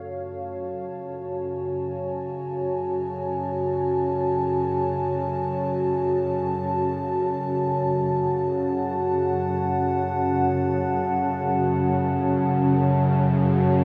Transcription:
Already playing: F#2 C#3 F#4 A4 C#5 F5 A5
1.07 G#5
8.08 F#5

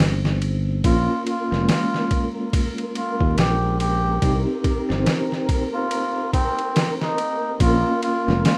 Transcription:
Already playing: C4 D#4 C5
0.00 G1, snare
0.25 snare
0.42 ride
0.84 A#1 A#3 C#4 F4 A#4, kick, ride
1.27 F4, ride
1.51 F1 G#3 A#3 C#4, snare
1.69 F4, snare, ride
1.94 snare
2.11 kick, ride
2.53 kick, ride
2.78 ride
2.95 F4, ride
3.20 D#2, kick
3.38 A#1 G4, snare, ride
3.80 G4, ride
4.22 C2 C4 D#4 G4, kick, ride
4.64 kick, ride
4.89 G1 C4 D#4 C5, snare
5.06 snare, ride
5.32 snare
5.49 kick, ride
5.75 F4
5.91 ride
6.33 C4, kick, ride
6.59 ride
6.76 snare, ride
7.01 D#4, snare
7.18 ride
7.60 A#1 A#3 C#4 F4, kick, ride
8.03 F4, ride
8.27 F1 G#3 A#3 C#4, snare
8.45 F4, snare, ride

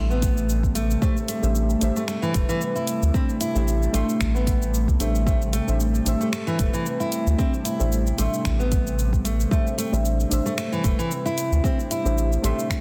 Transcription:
Already playing: A1 C3 G3 A3 D4 G4 C5 E5 C6
0.10 B3, shaker
0.22 kick, closed hi-hat, shaker
0.37 shaker
0.49 shaker
0.63 kick, shaker
0.75 A3, closed hi-hat, shaker
0.91 shaker
1.01 A3 D4 G4 C5 E5, kick, shaker
1.17 shaker
1.28 A3, closed hi-hat, shaker
1.42 A1 A3 D4 G4 C5 E5, shaker
1.55 shaker
1.70 shaker
1.80 A1 A3 D4 G4 C5, closed hi-hat, shaker
1.84 E5
1.96 A3, shaker
2.08 A3, finger snap, shaker
2.22 E3, shaker
2.34 E1 A3, kick, closed hi-hat, shaker
2.49 E3, shaker
2.61 shaker
2.75 E4, shaker
2.87 closed hi-hat, shaker
3.03 D2, shaker
3.14 A3 C4 D4 G4 C5 E5, kick, shaker
3.29 shaker
3.41 E4, closed hi-hat, shaker
3.55 A1 A3 D4 G4 C5 E5, shaker
3.68 shaker
3.83 shaker
3.92 A1 A3 D4 G4 C6, closed hi-hat, shaker
3.96 E5
4.09 shaker
4.20 A1, finger snap, kick, shaker
4.35 B3, shaker
4.47 kick, closed hi-hat, shaker
4.62 shaker
4.74 shaker
4.88 C2, kick, shaker
5.00 A1 A3 D4 G4 C5 E5, closed hi-hat, shaker
5.15 shaker
5.26 A3 D4 G4 C5 E5, kick, shaker
5.42 shaker
5.53 A3, closed hi-hat, shaker
5.67 A1 A3 D4 G4 C5 E5, shaker
5.80 shaker
5.95 shaker
6.04 A1 A3 D4 G4 C5 E5, closed hi-hat, shaker
6.21 A3, shaker
6.33 A3, finger snap, shaker
6.47 E3, shaker
6.59 E1 A3, kick, closed hi-hat, shaker
6.73 E3, shaker
6.86 shaker
7.00 E4, shaker
7.12 closed hi-hat, shaker
7.27 D2, shaker
7.38 A3 C4 D4 G4 C5 E5, kick, shaker
7.54 shaker
7.65 E4, closed hi-hat, shaker
7.79 A1 A3 D4 G4 C5 E5, shaker
7.92 shaker
8.07 shaker
8.17 A1 A3 D4 G4 E5 C6, closed hi-hat, shaker
8.34 shaker
8.45 A1, finger snap, kick, shaker
8.59 B3, shaker
8.72 kick, closed hi-hat, shaker
8.87 shaker
8.99 shaker
9.13 kick, shaker
9.25 A3, closed hi-hat, shaker
9.40 shaker
9.51 A3 D4 G4 C5 E5, kick, shaker
9.67 shaker
9.78 A3, closed hi-hat, shaker
9.92 A1 A3 D4 G4 C5 E5, shaker
10.05 shaker
10.20 shaker
10.29 A1 A3 D4 G4 C5, closed hi-hat, shaker
10.33 E5
10.46 A3, shaker
10.58 A3, finger snap, shaker
10.72 E3, shaker
10.84 E1 A3, kick, closed hi-hat, shaker
10.99 E3, shaker
11.11 shaker
11.26 E4, shaker
11.38 closed hi-hat, shaker
11.52 D2, shaker
11.63 A3 C4 D4 G4 C5 E5, kick, shaker
11.80 shaker
11.91 E4, closed hi-hat, shaker
12.04 A1 A3 D4 G4 C5 E5, shaker
12.18 shaker
12.33 shaker
12.42 A1 A3 D4 G4 E5 C6, closed hi-hat, shaker
12.59 shaker
12.70 finger snap, kick, shaker

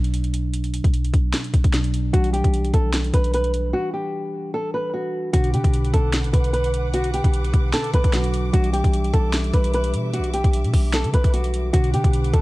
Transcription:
Already playing: B1 B2 F#3 D4
0.04 closed hi-hat
0.14 closed hi-hat
0.24 closed hi-hat
0.34 closed hi-hat
0.54 closed hi-hat
0.64 closed hi-hat
0.74 closed hi-hat
0.84 B1, kick, closed hi-hat
0.94 closed hi-hat
1.05 closed hi-hat
1.14 B1, kick, closed hi-hat
1.33 snare, closed hi-hat
1.44 closed hi-hat
1.54 B1, kick, closed hi-hat
1.64 B1, kick, closed hi-hat
1.73 B2 F#3 D4, snare, closed hi-hat
1.84 closed hi-hat
1.94 closed hi-hat
2.12 B1 E3 G3 D4 F#4, kick, closed hi-hat
2.24 closed hi-hat
2.33 G4, closed hi-hat
2.44 B1, kick, closed hi-hat
2.54 closed hi-hat
2.64 closed hi-hat
2.73 B1 A4, kick, closed hi-hat
2.93 snare, closed hi-hat
3.04 closed hi-hat
3.14 B1 B4, kick, closed hi-hat
3.24 closed hi-hat
3.34 B4, closed hi-hat
3.44 closed hi-hat
3.54 closed hi-hat
3.73 F#4
3.94 G4
4.54 A4
4.74 B4
4.94 F#4
5.33 B1 B2 D3 D4 F#4 B4 F#5 D6, kick, closed hi-hat
5.44 closed hi-hat
5.54 D3 G4, closed hi-hat
5.64 B1, kick, closed hi-hat
5.74 closed hi-hat
5.84 closed hi-hat
5.93 B1 A4, kick, closed hi-hat
6.13 snare, closed hi-hat
6.24 A1, closed hi-hat
6.33 B1 B4, kick, closed hi-hat
6.44 closed hi-hat
6.53 B4, closed hi-hat
6.64 closed hi-hat
6.74 closed hi-hat
6.94 F#4, closed hi-hat
7.04 closed hi-hat
7.14 G4, closed hi-hat
7.24 B1, kick, closed hi-hat
7.34 closed hi-hat
7.44 closed hi-hat
7.54 B1, kick, closed hi-hat
7.73 A4, snare, closed hi-hat
7.84 closed hi-hat
7.94 B1 B4, kick, closed hi-hat
8.04 B1, kick, closed hi-hat
8.13 B2 F#3 D4 F#4, snare, closed hi-hat
8.24 closed hi-hat
8.34 closed hi-hat
8.53 B1 E3 G3 D4 F#4 E5, kick, closed hi-hat
8.64 closed hi-hat
8.73 G4, closed hi-hat
8.84 B1, kick, closed hi-hat
8.93 closed hi-hat
9.04 closed hi-hat
9.13 B1 A4, kick, closed hi-hat
9.33 snare, closed hi-hat
9.44 closed hi-hat
9.54 B1 B4, kick, closed hi-hat
9.64 closed hi-hat
9.74 B4, closed hi-hat
9.84 closed hi-hat
9.94 B2, closed hi-hat
10.13 F#4, closed hi-hat
10.19 B1
10.24 closed hi-hat
10.34 G4, closed hi-hat
10.44 B1, kick, closed hi-hat
10.53 closed hi-hat
10.64 B2, closed hi-hat
10.74 B1, kick, open hi-hat
10.93 A4, snare, closed hi-hat
11.04 D3, closed hi-hat
11.14 B1 B4, kick, closed hi-hat
11.24 B1, kick, closed hi-hat
11.34 F#4, closed hi-hat
11.44 closed hi-hat
11.54 closed hi-hat
11.73 B1 B2 D3 D4 F#4 B4 F#5 D6, kick, closed hi-hat
11.84 closed hi-hat
11.94 D3 G4, closed hi-hat
12.04 B1, kick, closed hi-hat
12.13 closed hi-hat
12.24 closed hi-hat
12.33 B1 A4, kick, closed hi-hat

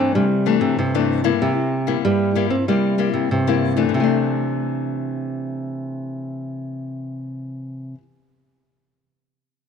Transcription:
Already playing: G2 E3 A3 C4 D4
0.15 C3 G3
0.46 E3 A3 D4
0.61 C3
0.79 G2 C3
0.95 E3 A3 D4
1.24 G3 A#3 E4
1.42 C3
1.87 G3 A#3 E4
2.05 G2 G3
2.35 G3 A#3 E4
2.50 C4
2.68 C3 G3 A#3 E4
2.98 G3 A#3 E4
3.14 C3
3.31 G2 C3
3.47 G3 A#3 E4
3.77 E3 A3 D4
3.89 C3
3.94 C3 E3
4.00 A3 D4

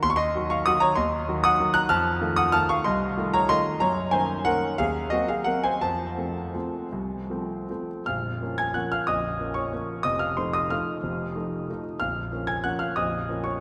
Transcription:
0.03 D#2 C6
0.10 C#6
0.16 D#5 C6
0.35 D#3 F#3 F#4
0.50 F5 C#6
0.66 D#3 F#3 F#4 F#5 D#6
0.80 C#5 A#5
0.96 D#2 D#5 C6
1.28 D#3 F#3 F#4
1.44 F#5 D#6
1.60 D#3 F#3 F#4
1.74 A#5 F#6
1.89 F2 A5 F6
2.21 D#3 A3 F4
2.36 F#5 D#6
2.52 D#3 A3 F4 A5 F6
2.69 F5 C#6
2.84 C2 D#5 C6
3.17 D#3 A3 F4
3.34 C#5 A#5
3.49 D#3 A3 F4 D#5 C6
3.80 F#2 C#5 A#5
4.11 D#3 A#3 C#4 C5 G#5
4.45 D#3 A#3 C#4 A#4 F#5
4.78 D#2 G#4 F5
5.10 F#3 A#3 C4 F#4 D#5
5.28 G#4 F5
5.44 F#3 A#3 C4 A#4 F#5
5.64 C5 G#5
5.81 F2 C5 A5
6.17 F3 A3 C4
6.54 F3 A3 C4
6.92 C2
7.30 F3 A3 C4
7.69 F3 A3 C4
8.06 A#0 A#1 F5 F6
8.41 F3 A#3 C#4
8.58 G#5 G#6
8.74 F3 A#3 C#4 F#5 F#6
8.92 F5 F6
9.07 A#0 A#1 D#5 D#6
9.39 F3 A#3 C#4
9.54 C#5 C#6
9.73 F3 A#3 C#4
10.03 F1 F2 D#5 D#6
10.19 F5 F6
10.37 F3 A3 D#4 C5 C6
10.53 D#5 D#6
10.70 F3 A3 D#4 F5 F6
11.03 F1 F2
11.36 F3 A3 D#4
11.70 F3 A3 D#4
12.00 A#0 A#1 F5 F6
12.32 F3 A#3 C#4
12.47 G#5 G#6
12.64 F3 A#3 C#4 F#5 F#6
12.79 F5 F6
12.96 A#0 A#1 D#5 D#6
13.29 F3 A#3 C#4
13.44 C#5 C#6

